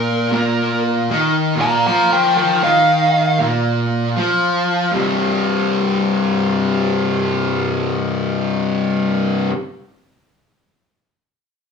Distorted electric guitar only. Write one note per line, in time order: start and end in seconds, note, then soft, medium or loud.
0.00 0.31 A#2 loud
0.32 1.08 A#2 loud
1.10 1.54 D#3 loud
1.55 1.85 A#2 loud
1.86 2.62 F3 loud
2.62 3.38 D#3 loud
3.39 4.15 A#2 loud
4.17 4.92 F3 loud
4.92 9.49 C2 medium
4.92 9.50 G2 loud
4.96 9.51 C3 loud